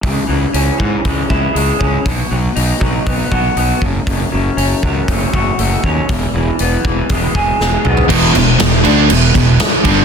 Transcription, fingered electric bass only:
X:1
M:4/4
L:1/8
Q:1/4=119
K:E
V:1 name="Fingered electric bass" clef=bass
C,, C,, C,, G,, C,, C,, C,, C,, | B,,, B,,, B,,, B,,, B,,, B,,, B,,, F,,, | F,,, F,,, F,,, C,, F,,, F,,, F,,, D,, | E,,, E,,, E,,, E,,, E,,, E,,, E,,, B,,, |
E,,, E,,, E,,, =D,, E,,, E,,, z =G,,, |]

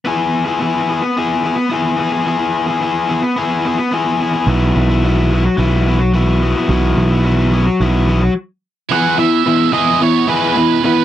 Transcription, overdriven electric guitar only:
X:1
M:4/4
L:1/16
Q:1/4=108
K:E
V:1 name="Overdriven electric guitar"
[B,EG]3 [EG] [B,EG]2 [B,EG]2 [B,EG]2 [B,EG]2 [B,EG]2 [B,EG] [EG] | [B,EG]3 [EG] [B,EG]2 [B,EG]2 [B,EG]2 [B,EG]2 [B,EG]2 [B,EG] [EG] | [F,B,E]3 [B,E] [F,B,E]2 [F,B,E]2 [F,B,E]2 [F,B,E]2 [F,B,E]2 [F,B,E] [B,E] | [F,B,E]3 [B,E] [F,B,E]2 [F,B,E]2 [F,B,E]2 [F,B,E]2 z4 |
[B,EG]2 [B,E]2 [B,E]2 [B,EG]2 [B,E]2 [B,EG]2 [B,E]2 [B,E]2 |]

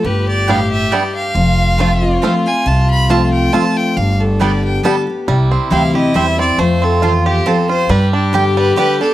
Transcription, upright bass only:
X:1
M:3/4
L:1/8
Q:"Swing" 1/4=138
K:Gmix
V:1 name="Upright bass" clef=bass
G,,,6 | F,,,6 | C,,6 | G,,,6 |
C,,2 D,,2 E,,2 | F,,6 | G,,6 |]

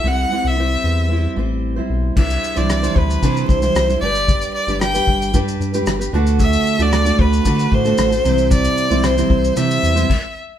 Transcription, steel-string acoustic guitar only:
X:1
M:4/4
L:1/16
Q:1/4=113
K:Clyd
V:1 name="Steel-string acoustic guitar"
[G,CEc]2 [G,CEc]2 [G,CEc]4 [G,CEc]2 [G,CEc]3 [G,CEc]3 | [G,DEc]3 [C,E,G,DEc]2 [C,E,G,DEc]3 [C,E,G,DEc]3 [C,E,G,DEc]2 [G,DEc] [G,DGB]2- | [G,DGB]3 [G,DGB]2 [G,DGB]3 [G,DGB]3 [G,DGB]2 [DGB] [D,A,DFA]2- | [D,A,DFA]3 [D,A,DFA]2 [D,A,DFA]3 [D,A,DFA]3 [D,A,DFA]2 [DFA] [C,E,G,CEc]2- |
[C,E,G,CEc]3 [C,E,G,CEc]2 [C,E,G,CEc]3 [C,E,G,CEc]3 [C,E,G,CEc] z4 |]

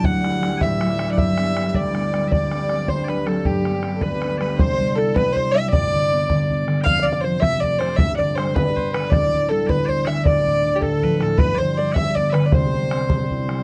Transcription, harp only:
X:1
M:6/8
L:1/8
Q:3/8=106
K:G
V:1 name="Harp" clef=bass
D,, [F,DE] [F,DE] A,, [F,DE] [F,DE] | G,, [G,B,D] [G,B,D] D,, [G,B,D] [G,B,D] | D,, [G,CD] [G,CD] D,, [F,CD] [F,CD] | G,, [G,B,D] [G,D] D,, [G,B,D] [G,B,D] |
[K:C] [C,,C,] G, E G, G G, | [G,,,G,,] D, B, D, D D, | [F,,,F,,] C, F, C, A, C, | [G,,,G,,] D, G, D, B, D, |
[D,,,D,,] D, G, D, B, D, | [D,,,D,,] A,, D, A,, F, A,, | [G,,,G,,] D, G, D, B, D, | [C,,C,] G, C G, E G, |]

